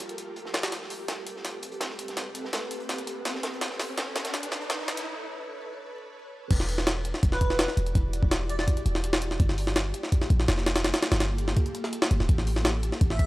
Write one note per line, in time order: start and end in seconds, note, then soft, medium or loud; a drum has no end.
0.00 0.69 F4 medium
0.00 3.58 G4 medium
0.00 0.70 A4 medium
0.00 0.70 A#4 medium
0.00 closed hi-hat medium
0.09 closed hi-hat soft
0.18 closed hi-hat medium
0.36 closed hi-hat medium
0.46 snare soft
0.54 snare loud
0.54 closed hi-hat medium
0.63 snare loud
0.63 closed hi-hat medium
0.63 closed hi-hat soft
0.72 3.59 C4 medium
0.72 3.59 A4 medium
0.72 3.59 B4 medium
0.72 snare soft
0.72 closed hi-hat medium
0.72 riser medium
0.82 snare soft
0.90 closed hi-hat medium
0.90 open hi-hat medium
1.08 snare soft
1.08 snare loud
1.08 closed hi-hat medium
1.26 closed hi-hat medium
1.36 snare soft
1.45 snare medium
1.45 closed hi-hat medium
1.62 closed hi-hat medium
1.72 closed hi-hat soft
1.81 snare loud
1.81 snare medium
1.81 closed hi-hat medium
1.90 snare soft
1.99 closed hi-hat medium
2.08 snare soft
2.08 closed hi-hat soft
2.17 snare medium
2.17 closed hi-hat medium
2.35 closed hi-hat medium
2.45 snare soft
2.53 snare medium
2.53 snare loud
2.53 closed hi-hat medium
2.71 closed hi-hat medium
2.80 closed hi-hat soft
2.89 snare medium
2.89 closed hi-hat medium
2.98 closed hi-hat soft
3.07 closed hi-hat medium
3.25 snare medium
3.25 closed hi-hat medium
3.35 snare soft
3.43 snare loud
3.43 closed hi-hat medium
3.53 closed hi-hat soft
3.61 6.48 D4 medium
3.61 6.48 A4 medium
3.61 6.48 B4 medium
3.61 6.48 C#5 medium
3.61 snare medium
3.61 closed hi-hat medium
3.70 snare soft
3.79 snare medium
3.79 closed hi-hat medium
3.79 open hi-hat medium
3.97 snare medium
3.97 snare loud
3.97 closed hi-hat medium
4.16 snare medium
4.16 snare loud
4.16 closed hi-hat medium
4.25 snare loud
4.25 closed hi-hat medium
4.34 snare medium
4.34 closed hi-hat medium
4.43 closed hi-hat medium
4.51 snare medium
4.51 closed hi-hat medium
4.61 closed hi-hat soft
4.70 snare medium
4.70 snare loud
4.70 closed hi-hat medium
4.79 snare soft
4.88 snare medium
4.88 closed hi-hat medium
4.97 snare soft
4.97 closed hi-hat medium
6.51 7.13 E1 loud
6.51 9.37 E4 medium
6.51 9.37 F#4 medium
6.51 13.27 G4 medium
6.51 9.37 D5 medium
6.51 kick loud
6.51 closed hi-hat medium
6.51 crash loud
6.60 snare soft
6.69 open hi-hat medium
6.78 snare medium
6.87 snare loud
6.87 closed hi-hat medium
7.05 closed hi-hat medium
7.14 snare soft
7.23 7.67 E1 medium
7.23 kick loud
7.23 closed hi-hat medium
7.32 7.68 B4 medium
7.32 snare soft
7.41 kick medium
7.41 closed hi-hat medium
7.50 snare soft
7.59 snare loud
7.59 closed hi-hat medium
7.68 snare soft
7.77 7.93 E1 medium
7.77 closed hi-hat medium
7.87 closed hi-hat soft
7.95 8.21 E1 loud
7.95 kick loud
7.95 closed hi-hat medium
8.13 closed hi-hat medium
8.23 8.66 E1 medium
8.23 kick loud
8.31 snare loud
8.31 closed hi-hat medium
8.49 8.56 D5 medium
8.49 closed hi-hat medium
8.59 8.64 D5 medium
8.59 snare medium
8.68 kick loud
8.68 closed hi-hat medium
8.77 closed hi-hat soft
8.86 9.38 E1 medium
8.86 closed hi-hat medium
8.95 snare medium
9.04 closed hi-hat medium
9.13 snare loud
9.22 closed hi-hat medium
9.31 snare soft
9.40 9.93 G1 medium
9.40 12.26 A#3 medium
9.40 12.26 F4 medium
9.40 13.27 A4 medium
9.40 kick loud
9.40 closed hi-hat medium
9.49 snare soft
9.58 open hi-hat medium
9.67 snare medium
9.76 snare loud
9.76 closed hi-hat medium
9.94 closed hi-hat medium
10.03 snare soft
10.12 kick loud
10.12 closed hi-hat medium
10.21 snare soft
10.30 10.46 A#1 medium
10.30 kick medium
10.30 closed hi-hat medium
10.40 snare medium
10.48 10.92 F1 loud
10.48 snare loud
10.48 closed hi-hat medium
10.58 snare soft
10.66 snare loud
10.66 closed hi-hat medium
10.76 snare loud
10.76 closed hi-hat medium
10.84 snare loud
10.84 closed hi-hat medium
10.94 snare loud
10.94 closed hi-hat medium
11.02 snare loud
11.02 closed hi-hat medium
11.12 11.55 G1 loud
11.12 snare loud
11.12 closed hi-hat medium
11.20 snare loud
11.20 closed hi-hat medium
11.38 closed hi-hat medium
11.48 snare medium
11.57 kick loud
11.57 closed hi-hat medium
11.66 closed hi-hat soft
11.75 closed hi-hat medium
11.84 snare medium
11.93 closed hi-hat medium
12.02 snare loud
12.11 12.19 G1 loud
12.11 closed hi-hat medium
12.20 12.28 D1 loud
12.20 snare soft
12.29 12.91 A1 loud
12.29 13.27 B3 medium
12.29 13.27 C4 medium
12.29 kick loud
12.29 closed hi-hat medium
12.38 snare soft
12.47 open hi-hat medium
12.56 snare medium
12.65 snare loud
12.65 closed hi-hat medium
12.83 closed hi-hat medium
12.92 snare soft
13.01 13.27 A1 medium
13.01 kick loud
13.01 closed hi-hat medium
13.10 13.27 E5 medium
13.10 snare soft
13.19 kick medium
13.19 closed hi-hat medium